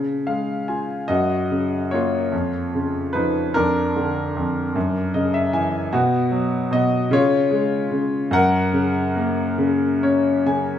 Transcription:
0.00 1.06 C#3 medium
0.27 1.08 G#3 soft
0.27 0.65 F5 medium
0.68 1.09 F4 soft
0.68 1.07 G#5 soft
1.08 2.29 F#2 medium
1.08 1.89 F#4 medium
1.08 1.94 D#5 medium
1.51 2.30 C#3 soft
1.91 2.32 A#3 soft
1.91 2.70 F4 medium
1.91 2.69 C#5 medium
2.32 3.51 F2 soft
2.74 3.53 C#3 soft
3.13 3.54 F3 soft
3.13 3.53 D#4 medium
3.13 3.56 B4 medium
3.54 4.35 F2 medium
3.54 5.11 D4 medium
3.54 5.10 A#4 medium
3.96 4.74 D3 soft
4.37 4.75 F2 soft
4.75 5.89 F#2 medium
5.14 5.90 C#3 soft
5.14 5.33 D#5 medium
5.34 5.52 E5 medium
5.53 5.92 E3 soft
5.53 5.90 G#5 medium
5.92 6.69 B2 medium
5.92 6.68 B3 medium
5.92 6.73 F#4 medium
6.31 7.09 F#3 soft
6.71 7.10 B2 medium
6.71 7.10 F#4 medium
6.71 7.14 D#5 medium
7.11 7.89 C#3 medium
7.11 8.30 F4 medium
7.11 8.37 C#5 medium
7.51 8.30 G#3 soft
7.91 8.31 C#3 soft
8.31 10.79 F#2 medium
8.31 9.56 A#4 medium
8.31 9.56 F#5 medium
8.73 9.57 C#3 soft
9.16 10.79 A#3 medium
9.58 10.45 C#3 medium
10.03 10.79 C#4 soft
10.03 10.44 C#5 medium
10.46 10.79 C#3 soft
10.46 10.79 G#5 medium

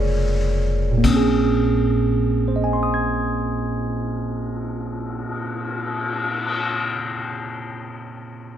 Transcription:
0.00 1.00 F1 medium
0.00 1.02 C#3 medium
0.00 1.03 G#3 soft
0.00 0.97 A#3 soft
0.00 1.07 F4 medium
0.00 1.06 G#4 medium
0.00 1.06 C#5 medium
0.00 1.06 D5 medium
0.92 5.15 A#2 medium
0.98 5.21 A#3 medium
1.04 5.23 A#1 medium
1.04 5.28 C4 medium
1.04 kick medium
1.04 crash medium
1.10 5.34 C#4 medium
1.16 5.40 G#4 medium
2.00 cymbal swell soft
2.48 6.68 C5 soft
2.56 6.76 D#5 soft
2.64 6.83 G#5 soft
2.73 6.93 C6 soft
2.83 7.02 D#6 soft
2.94 7.14 G#6 soft

